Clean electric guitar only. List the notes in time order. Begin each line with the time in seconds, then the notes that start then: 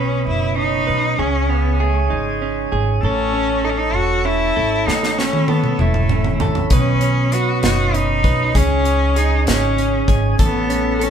Already playing: B2 C#4 B4
0.56 C#4
0.87 B4
1.18 C#3 G#4
1.49 C#4
1.80 G#4
2.10 D#4
2.42 C#4
2.72 G#4
3.05 A4
3.33 C#4
3.65 A4
4.25 C#4
4.56 A4
4.87 A2 A4
5.18 C#4
5.49 A4
5.80 E4
6.11 C#4
6.41 A4
6.73 B2 B4
7.03 C#4
7.33 B4
7.63 D#4
7.94 C#4
8.25 B4
8.55 C#3 G#4
8.85 C#4
9.16 G#4
9.48 D#4
9.79 C#4
10.09 G#4
10.40 A4
10.70 C#4
11.00 A4